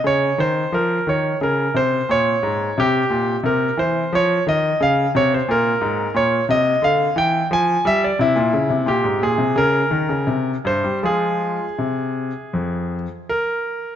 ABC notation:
X:1
M:4/4
L:1/16
Q:1/4=88
K:Bbm
V:1 name="Grand piano"
d2 c2 B2 d2 B2 c2 d4 | [K:Fm] G4 B2 c2 d2 e2 f2 d c | B4 d2 e2 f2 g2 a2 =e =d | =E4 G2 A2 B6 c2 |
A12 B4 |]
V:2 name="Grand piano" clef=bass
D,2 E,2 F,2 E,2 D,2 C,2 B,,2 A,,2 | [K:Fm] C,2 B,,2 C,2 =E,2 F,2 _E,2 D,2 C,2 | B,,2 A,,2 B,,2 C,2 =D,2 =E,2 F,2 G,2 | C, B,, D, C, B,, A,, B,, C, D,2 E, D, C,2 G,, G, |
[F,A,F]4 C,4 F,,4 z4 |]